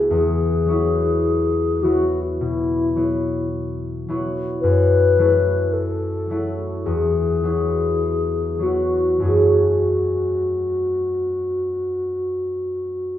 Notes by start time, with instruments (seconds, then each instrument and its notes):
Already playing: harp C#2 A3 B3 E4 G#4
0.10 harp E2, alto flute G#4
0.65 harp F#3 B3 F#4
0.70 harp E4
1.83 harp F#3 B3 E4 F#4, alto flute F#4
2.39 harp B2, alto flute E4
2.96 harp F#3 B3 E4 F#4
4.08 harp F#3 B3 E4 F#4
4.60 harp F#2, alto flute B4
5.18 harp F#3 A3 E4 F#4
5.73 alto flute A4
6.30 harp F#3 A3 E4 F#4
6.84 harp E2, alto flute G#4
7.43 harp F#3 B3 E4 F#4
8.59 harp F#3 B3 F#4, alto flute F#4
8.65 harp E4
9.20 harp F#2 F#3 A3 C#4
9.24 alto flute F#4, harp G#4